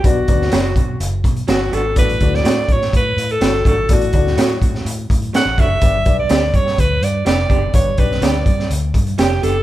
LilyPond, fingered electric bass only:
\new Staff \with { instrumentName = "Fingered electric bass" } { \clef bass \time 4/4 \key d \major \tempo 4 = 125 b,,8 d,8 fis,,8 b,8 fis,,8 b,8 g,,8 gis,,8 | a,,8 d,8 a,8 a,8 a,8 a,8 g,,8 gis,,8 | a,,8 d,8 a,8 a,8 a,8 a,8. a,,16 fis,,8 | g,,8 b,,8 d,8 g,8 d,8 g,8 eis,,8 fis,,8 |
g,,8 b,,8 d,8 g,8 d,8 g,8 eis,,8 fis,,8 | }